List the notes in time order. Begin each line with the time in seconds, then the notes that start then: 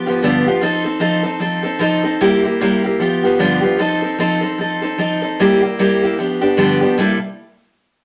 0.06 F3 B3 F4 G4
0.23 G2 D3 F3 B3 F4 G4
0.46 F3 B3 F4 G4
0.61 F3 C4 D#4 A4
0.85 C4 D#4 A4
1.00 F3 C4 D#4 A4
1.23 C4 D#4 A4
1.39 F3 C4 D#4 A4
1.63 C4 D#4 A4
1.79 F3 C4 D#4 A4
2.04 C4 D#4 A4
2.21 C3 G3 A#3 E4 G4
2.44 A#3 E4 G4
2.61 C3 G3 A#3 E4 G4
2.84 A#3 E4 G4
2.99 F3 B3 F4 G4
3.23 F3 B3 F4 G4
3.39 G2 D3 F3 B3 F4 G4
3.61 F3 B3 F4 G4
3.78 F3 C4 D#4 A4
4.02 C4 D#4 A4
4.19 F3 C4 D#4 A4
4.41 C4 D#4 A4
4.58 F3 C4 D#4 A4
4.82 C4 D#4 A4
4.98 F3 C4 D#4 A4
5.22 C4 D#4 A4
5.40 C3 G3 A#3 E4 G4
5.62 A#3 E4 G4
5.79 C3 G3 A#3 E4 G4
6.03 A#3 E4 G4
6.18 F3 B3 D4 G4
6.41 F3 B3 D4 G4
6.57 G2 D3 F3 B3 D4 G4
6.81 F3 B3 D4 G4
6.98 C3 G3 A#3 E4 A4